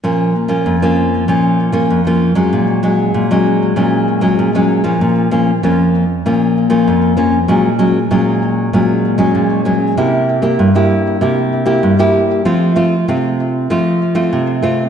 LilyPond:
\new Staff \with { instrumentName = "Nylon-string guitar" } { \time 4/4 \key bes \minor \tempo 4 = 97 << { <f bes des'>8 r16 <f bes des'>8 <f bes des'>8. <f bes des'>8. <f bes des'>8 <f bes des'>8 <ges aes des'>16~ | <ges aes des'>8 <ges aes des'>8. <ges aes des'>8. <ges aes des'>8. <ges aes des'>8 <ges aes des'>8 <f bes des'>16~ | <f bes des'>8 <f bes des'>16 r16 <f bes des'>8. r16 <f bes des'>8. <f bes des'>8. <f bes des'>16 r16 | <ges aes des'>16 r16 <ges aes des'>16 r16 <ges aes des'>4 <ges aes des'>8. <ges aes des'>8. <ges aes des'>8 |
<bes e' g'>8. <bes e' g'>8 <bes e' g'>8. <bes e' g'>8. <bes e' g'>8 <bes e' g'>8. | <a c' f'>8 <a c' f'>16 r16 <a c' f'>4 <a c' f'>8 r16 <a c' f'>8. <a c' f'>16 r16 | } \\ { bes,4 f,4 bes,4 f,4 | bes,4 bes,4 bes,4 bes,4 | bes,4 f,4 bes,4 f,4 | bes,4 bes,4 bes,4 bes,4 |
c4 g,4 c4 g,4 | f4 c4 f4 c4 | } >> }